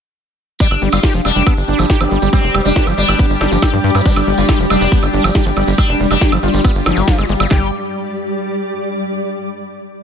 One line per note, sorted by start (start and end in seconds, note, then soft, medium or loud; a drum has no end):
0.59 7.50 G3 medium
0.59 7.55 G3 medium
0.59 0.67 G3 medium
0.59 0.81 D4 loud
0.59 7.55 G4 medium
0.59 kick loud
0.59 closed hi-hat medium
0.59 tambourine medium
0.71 0.77 G1 medium
0.71 7.51 G4 loud
0.71 closed hi-hat medium
0.71 tambourine soft
0.71 high woodblock soft
0.82 0.88 G1 loud
0.82 0.89 G3 loud
0.82 open hi-hat loud
0.88 7.51 D6 medium
0.92 0.99 G1 loud
0.92 1.00 G3 loud
0.92 1.14 F4 medium
0.92 closed hi-hat medium
0.92 tambourine medium
0.92 high woodblock medium
1.00 1.14 G4 loud
1.00 7.51 D5 medium
1.00 kick loud
1.00 snare loud
1.00 closed hi-hat medium
1.04 tambourine medium
1.14 1.21 F1 medium
1.14 1.21 F3 loud
1.14 closed hi-hat medium
1.14 tambourine soft
1.25 1.31 F1 loud
1.25 1.32 G3 medium
1.25 2.24 D4 loud
1.25 open hi-hat loud
1.25 high woodblock soft
1.35 1.42 F1 loud
1.35 1.43 G3 medium
1.35 closed hi-hat medium
1.35 tambourine medium
1.47 1.54 B3 medium
1.47 kick loud
1.47 closed hi-hat medium
1.47 tambourine medium
1.47 high woodblock medium
1.57 1.64 G1 medium
1.57 closed hi-hat medium
1.57 tambourine soft
1.68 1.75 G1 loud
1.68 1.78 D4 loud
1.68 open hi-hat loud
1.79 1.85 G1 loud
1.79 1.86 F3 medium
1.79 closed hi-hat medium
1.79 tambourine medium
1.79 high woodblock soft
1.90 2.00 G4 loud
1.90 kick loud
1.90 snare loud
1.90 closed hi-hat medium
1.90 tambourine medium
2.00 2.07 G1 medium
2.00 2.05 F3 medium
2.00 2.13 B3 medium
2.00 closed hi-hat medium
2.00 tambourine soft
2.00 high woodblock medium
2.11 2.18 G1 loud
2.11 2.18 G3 medium
2.11 open hi-hat medium
2.22 2.29 G1 medium
2.22 2.29 G3 medium
2.22 closed hi-hat medium
2.22 tambourine medium
2.33 2.40 G3 medium
2.33 2.46 G3 loud
2.33 2.54 C4 medium
2.33 kick loud
2.33 closed hi-hat medium
2.33 tambourine medium
2.33 high woodblock soft
2.44 2.50 F1 medium
2.44 closed hi-hat medium
2.44 tambourine soft
2.54 2.61 F1 loud
2.54 2.62 G3 loud
2.54 open hi-hat loud
2.54 high woodblock medium
2.65 2.72 F1 medium
2.65 2.72 G3 loud
2.65 2.86 D4 medium
2.65 closed hi-hat medium
2.65 tambourine medium
2.75 2.89 B3 loud
2.75 2.86 G4 loud
2.75 kick loud
2.75 snare loud
2.75 closed hi-hat medium
2.75 tambourine medium
2.87 2.93 G1 medium
2.87 2.94 F3 loud
2.87 closed hi-hat medium
2.87 tambourine soft
2.87 high woodblock soft
2.98 3.04 G1 loud
2.98 3.05 G3 medium
2.98 3.97 D4 loud
2.98 open hi-hat loud
3.08 3.15 G1 loud
3.08 3.16 G3 medium
3.08 closed hi-hat medium
3.08 tambourine medium
3.08 high woodblock medium
3.19 3.26 B3 medium
3.19 kick loud
3.19 closed hi-hat medium
3.19 tambourine medium
3.30 3.36 G1 medium
3.30 closed hi-hat medium
3.30 tambourine soft
3.41 3.47 G1 loud
3.41 3.51 D4 loud
3.41 snare medium
3.41 open hi-hat loud
3.41 high woodblock soft
3.52 3.58 G1 medium
3.52 3.59 F3 medium
3.52 closed hi-hat medium
3.52 tambourine medium
3.62 3.73 G4 loud
3.62 kick loud
3.62 snare loud
3.62 closed hi-hat medium
3.62 tambourine medium
3.62 high woodblock medium
3.73 3.80 G2 medium
3.73 3.77 F3 medium
3.73 closed hi-hat medium
3.73 tambourine soft
3.84 3.90 G2 loud
3.84 3.91 G3 medium
3.84 open hi-hat loud
3.94 4.01 G2 medium
3.94 4.02 G3 medium
3.94 4.02 B3 medium
3.94 closed hi-hat medium
3.94 tambourine medium
3.94 high woodblock soft
4.05 4.13 G3 medium
4.05 4.12 B3 medium
4.05 4.27 D4 loud
4.05 kick loud
4.05 closed hi-hat medium
4.05 tambourine medium
4.16 4.23 G1 medium
4.16 closed hi-hat medium
4.16 tambourine soft
4.16 high woodblock medium
4.27 4.34 G1 loud
4.27 4.34 G3 loud
4.27 open hi-hat loud
4.38 4.44 G1 medium
4.38 4.45 G3 loud
4.38 4.59 F4 medium
4.38 closed hi-hat medium
4.38 tambourine medium
4.49 4.59 G4 loud
4.49 kick loud
4.49 snare loud
4.49 closed hi-hat medium
4.49 tambourine medium
4.49 high woodblock soft
4.59 4.66 F1 medium
4.59 4.67 F3 loud
4.59 closed hi-hat medium
4.59 tambourine soft
4.70 4.77 F1 loud
4.70 4.77 G3 medium
4.70 5.70 D4 loud
4.70 open hi-hat loud
4.70 high woodblock medium
4.81 4.88 F1 loud
4.81 4.88 G3 medium
4.81 closed hi-hat medium
4.81 tambourine medium
4.92 4.99 B3 medium
4.92 kick loud
4.92 closed hi-hat medium
4.92 tambourine medium
5.03 5.09 G1 medium
5.03 closed hi-hat medium
5.03 tambourine soft
5.03 high woodblock soft
5.13 5.20 G1 loud
5.13 5.24 D4 loud
5.13 open hi-hat loud
5.24 5.31 G1 loud
5.24 5.31 F3 medium
5.24 closed hi-hat medium
5.24 tambourine medium
5.24 high woodblock medium
5.35 5.45 G4 loud
5.35 kick loud
5.35 snare loud
5.35 closed hi-hat medium
5.35 tambourine medium
5.46 5.52 G1 medium
5.46 5.50 F3 medium
5.46 closed hi-hat medium
5.46 tambourine soft
5.57 5.63 G1 loud
5.57 5.64 G3 medium
5.57 open hi-hat loud
5.57 high woodblock soft
5.67 5.74 G1 loud
5.67 5.75 G3 medium
5.67 closed hi-hat medium
5.67 tambourine medium
5.78 5.85 G3 medium
5.78 5.99 D4 loud
5.78 kick loud
5.78 closed hi-hat medium
5.78 tambourine medium
5.78 high woodblock medium
5.89 5.95 F1 medium
5.89 closed hi-hat medium
5.89 tambourine soft
6.00 6.06 F1 loud
6.00 6.07 G3 loud
6.00 open hi-hat loud
6.11 6.17 F1 medium
6.11 6.18 G3 loud
6.11 6.32 D4 medium
6.11 closed hi-hat medium
6.11 tambourine medium
6.11 high woodblock soft
6.21 6.32 G4 loud
6.21 kick loud
6.21 snare loud
6.21 closed hi-hat medium
6.21 tambourine medium
6.32 6.39 G1 medium
6.32 6.39 F3 loud
6.32 closed hi-hat medium
6.32 tambourine soft
6.32 high woodblock medium
6.43 6.49 G1 loud
6.43 6.50 G3 medium
6.43 7.42 F4 loud
6.43 open hi-hat loud
6.54 6.60 G1 loud
6.54 6.61 G3 medium
6.54 closed hi-hat medium
6.54 tambourine medium
6.64 6.72 B3 medium
6.64 kick loud
6.64 closed hi-hat medium
6.64 tambourine medium
6.64 high woodblock soft
6.75 6.82 G1 medium
6.75 closed hi-hat medium
6.75 tambourine soft
6.86 6.93 G1 loud
6.86 6.98 F3 loud
6.86 snare medium
6.86 open hi-hat loud
6.86 high woodblock medium
6.97 7.03 G1 medium
6.97 7.09 G3 medium
6.97 closed hi-hat medium
6.97 tambourine medium
7.08 7.18 F3 medium
7.08 kick loud
7.08 snare loud
7.08 closed hi-hat medium
7.08 tambourine medium
7.18 7.25 G1 medium
7.18 7.26 G#3 medium
7.18 closed hi-hat medium
7.18 tambourine soft
7.18 high woodblock soft
7.29 7.36 G1 loud
7.29 7.34 G#3 medium
7.29 open hi-hat loud
7.40 7.46 G1 loud
7.40 7.47 G3 medium
7.40 closed hi-hat medium
7.40 tambourine medium
7.40 high woodblock medium
7.51 7.71 G1 loud
7.51 7.71 G3 loud
7.51 9.20 G3 medium
7.51 7.67 G4 loud
7.51 kick loud
7.51 snare loud
7.57 9.20 G4 medium
7.64 9.20 D5 medium
7.70 9.20 D6 medium